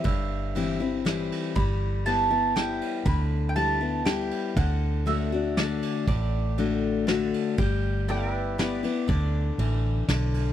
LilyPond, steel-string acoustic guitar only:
\new Staff \with { instrumentName = "Steel-string acoustic guitar" } { \time 3/4 \key g \major \tempo 4 = 120 << { r4 <e g c' e'>8 <c' e'>8 <e g c' e'>4 | r4 <g b e'>8 <b e'>8 <g b e'>4 | r4 <g b e'>8 <b e'>8 <g b e'>4 | r4 <d a d' fis'>8 <d' fis'>8 <d a d' fis'>4 |
r4 <d a d' fis'>4 <d a d' fis'>4 | r4 <g b e'>4 <g b e'>8 <b e'>8 | r2. | } \\ { g,2 r4 | g2 r4 | d2 r4 | d2 r4 |
a,2 r4 | g2 r4 | d4 e4 d4 | } >> }